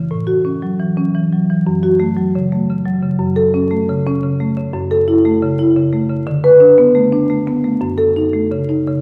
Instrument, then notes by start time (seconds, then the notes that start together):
marimba
Already playing: C#3
0.11 A2
0.27 F#4
0.45 C#4
0.62 F#3
0.80 E3
0.97 C#4
1.15 E3
1.33 F#3
1.50 E3
1.67 F#2
1.83 F#4
2.00 A3
2.16 F#3
2.35 C#3
2.52 A3
2.70 C#3
2.86 F#3
3.02 C#3
3.19 F#2
3.36 A4
3.54 C#4
3.71 A3
3.89 C#3
4.07 C#4
4.23 C#3
4.40 A3
4.57 C#3
4.73 F#2
4.91 A4
5.08 E4
5.25 A3
5.43 C#3
5.59 E4
5.76 C#3
5.93 A3
6.10 C#3
6.27 D3
6.44 B4
6.60 D4
6.78 B3
6.95 A3
7.12 D4
7.30 A3
7.47 B3
7.64 A3
7.81 F#2
7.98 A4
8.16 D#4
8.33 A3
8.51 C#3
8.69 D#4
8.87 C#3